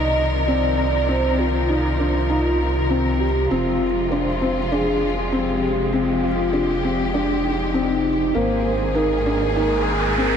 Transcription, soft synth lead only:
0.00 0.48 D#5 loud
0.47 0.76 D5 loud
0.77 1.09 D5 medium
1.08 1.40 C5 loud
1.38 3.21 F4 loud
3.20 3.51 G4 medium
3.49 4.11 F4 loud
4.09 4.71 C5 medium
4.72 5.34 G#4 medium
5.32 5.94 G4 medium
5.92 6.22 F4 medium
6.22 7.10 F4 medium
7.43 8.36 D#4 medium
8.34 8.97 C5 loud
8.95 9.55 A#4 loud
9.56 10.37 A#4 loud

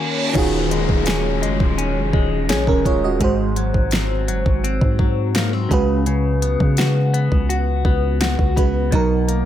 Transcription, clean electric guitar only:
0.00 0.35 D#3 medium
0.00 0.71 A#3 medium
0.00 1.06 C#4 medium
0.00 0.74 F#4 medium
0.35 3.56 D#3 medium
0.71 1.42 G#3 medium
1.07 1.77 C#4 medium
1.42 2.13 G#3 medium
1.78 2.48 C#4 medium
2.13 2.85 G#3 medium
2.49 3.28 C#4 medium
2.85 3.60 G#3 medium
3.21 5.78 G#2 medium
3.57 4.28 F#3 medium
3.92 4.63 C4 medium
4.28 4.99 F#3 medium
4.64 5.35 C4 medium
5.00 8.50 F#3 medium
5.35 5.53 A#3 medium
5.53 5.78 C4 medium
5.71 6.05 C#3 medium
6.07 8.92 C#3 medium
6.42 7.13 B3 medium
6.78 7.49 F#4 medium
7.14 7.85 B3 medium
7.49 8.21 F#4 medium
7.85 8.56 B3 medium
8.21 9.45 F#4 medium
8.56 9.28 B3 medium
8.92 9.45 B2 medium
9.28 9.45 A#3 medium

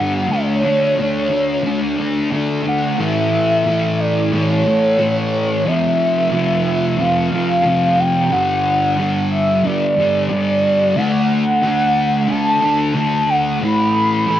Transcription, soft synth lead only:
0.00 0.33 F#5 loud
0.31 2.32 C#5 loud
2.68 3.02 F#5 medium
3.00 4.01 E5 loud
4.00 4.36 D5 loud
4.35 5.69 C#5 loud
5.67 7.02 E5 loud
7.01 8.01 F5 loud
7.99 8.32 G5 medium
8.32 9.28 F#5 loud
9.31 9.66 E5 loud
9.65 10.98 D5 loud
10.96 12.31 F#5 loud
12.30 13.31 A5 loud
13.29 13.62 F#5 loud
13.63 14.40 B5 loud

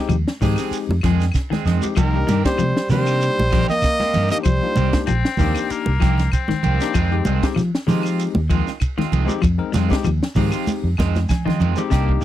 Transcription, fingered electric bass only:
0.09 0.23 D#2 medium
0.42 0.55 G#2 loud
0.71 muted fingered electric bass stroke soft
0.89 1.01 F2 loud
1.04 1.29 F2 loud
1.51 muted fingered electric bass stroke soft
1.66 1.79 F2 loud
1.97 2.22 C2 loud
2.28 2.42 G2 medium
2.58 2.72 C3 medium
2.89 3.28 C3 medium
3.39 3.64 A#1 loud
4.16 4.29 G2 medium
4.46 4.59 C2 medium
4.77 4.90 C2 loud
5.09 5.22 A#1 loud
5.40 5.53 D#2 loud
5.71 muted fingered electric bass stroke soft
5.87 5.99 C2 loud
6.02 6.27 C2 loud
6.52 muted fingered electric bass stroke soft
6.65 6.78 C2 loud
6.95 7.20 F2 loud
7.26 7.39 C2 medium
7.56 7.70 F3 loud
7.88 8.26 F3 medium
8.36 8.61 D#2 medium
9.12 9.26 C2 medium
9.44 9.57 F2 loud
9.75 9.88 F2 loud
10.06 10.19 D#2 loud
10.37 10.50 G#2 loud
10.67 muted fingered electric bass stroke soft
10.84 10.95 F2 loud
10.99 11.24 F2 loud
11.46 muted fingered electric bass stroke soft
11.60 11.74 F2 loud
11.93 12.17 C2 loud

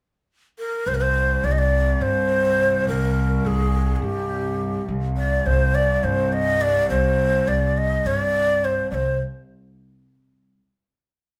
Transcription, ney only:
0.59 0.89 A#4 medium
0.87 0.96 C5 medium
0.95 1.03 A#4 medium
1.01 1.46 C5 medium
1.44 1.53 D5 medium
1.52 1.60 D#5 medium
1.58 2.03 D5 medium
2.02 2.88 C5 medium
2.88 3.48 A#4 medium
3.47 3.96 G#4 medium
3.96 4.06 G#4 medium
4.04 4.89 G4 medium
5.17 5.48 D5 medium
5.46 5.76 C5 medium
5.75 6.05 D5 medium
6.04 6.34 C5 medium
6.33 6.63 D#5 medium
6.61 6.89 D5 loud
6.90 7.49 C5 medium
7.48 7.79 D5 medium
7.77 8.08 D#5 medium
8.06 8.18 C#5 medium
8.18 8.66 D5 medium
8.65 8.90 C5 medium
8.91 9.18 C5 medium
8.91 8.95 D5 medium

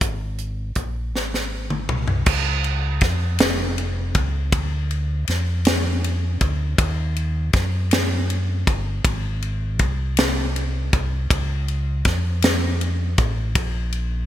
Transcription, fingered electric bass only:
0.01 0.72 G#1 medium
0.76 1.14 A#1 medium
1.14 1.85 G#1 medium
1.89 2.24 C2 medium
2.27 2.98 C#2 loud
3.02 3.37 F2 medium
3.39 4.11 F1 medium
4.15 4.50 C#2 medium
4.52 5.24 D2 loud
5.28 6.37 F2 medium
6.41 6.76 D2 loud
6.78 7.50 D#2 loud
7.54 8.63 F#2 medium
8.67 9.02 G1 medium
9.04 9.80 G#1 loud
9.80 10.88 C2 medium
10.93 11.27 C2 medium
11.31 12.02 C#2 loud
12.05 13.14 F2 medium
13.18 13.53 A1 medium
13.55 14.26 A#1 loud

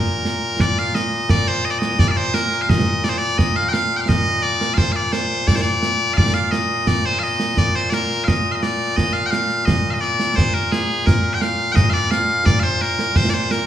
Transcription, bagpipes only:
0.00 13.66 A#2 medium
0.00 0.61 A#4 medium
0.61 0.79 D5 loud
0.79 0.95 F5 loud
0.95 1.30 D#5 loud
1.30 1.48 D5 loud
1.48 1.65 C5 loud
1.65 1.70 D#5 loud
1.70 1.79 D5 medium
1.79 1.99 D#5 medium
1.99 2.08 D5 loud
2.08 2.17 D5 medium
2.08 2.11 F5 medium
2.17 2.34 C5 loud
2.34 2.62 A#4 loud
2.62 2.70 F5 medium
2.70 3.04 D#5 loud
3.04 3.09 D5 medium
3.09 3.18 C5 medium
3.18 3.38 D5 loud
3.38 3.56 D#5 loud
3.56 3.68 F5 loud
3.68 3.73 G5 loud
3.73 3.96 F5 loud
3.96 4.01 G5 medium
4.01 4.09 F5 medium
4.09 4.42 D#5 loud
4.42 4.74 D5 loud
4.74 4.92 C5 loud
4.74 4.78 F5 loud
4.92 5.12 D5 medium
4.92 4.96 F5 medium
5.12 5.47 C5 loud
5.47 5.56 D5 loud
5.56 5.61 C5 medium
5.61 6.13 D5 loud
6.13 6.34 D5 loud
6.13 6.17 F5 loud
6.34 6.51 F5 loud
6.51 6.87 D#5 loud
6.87 7.06 D5 loud
7.06 7.19 C5 medium
7.19 7.23 F5 loud
7.23 7.58 D#5 loud
7.58 7.76 D5 loud
7.76 7.90 C5 medium
7.90 8.24 A#4 loud
7.90 7.94 D5 loud
8.24 8.52 D#5 loud
8.24 8.28 F5 loud
8.52 8.62 D#5 medium
8.52 8.55 F5 medium
8.62 8.96 D5 medium
8.96 9.13 D#5 loud
9.13 9.26 F5 medium
9.26 9.30 G5 loud
9.30 9.65 F5 loud
9.65 9.91 D#5 loud
9.91 10.01 D#5 medium
9.91 9.94 F5 medium
10.01 10.36 D5 medium
10.36 10.54 C5 medium
10.54 10.72 A#4 medium
10.72 11.06 G#4 medium
11.06 11.34 A#4 medium
11.34 11.41 G5 medium
11.41 11.72 F5 loud
11.72 11.90 D#5 loud
11.72 11.75 G5 loud
11.90 12.11 D5 loud
11.90 11.93 F5 loud
12.11 12.46 F5 loud
12.46 12.60 D5 loud
12.60 12.82 C5 loud
12.60 12.63 F5 loud
12.82 13.16 A#4 loud
13.16 13.30 C5 loud
13.30 13.34 D5 medium
13.34 13.51 C5 medium
13.51 13.66 A#4 medium

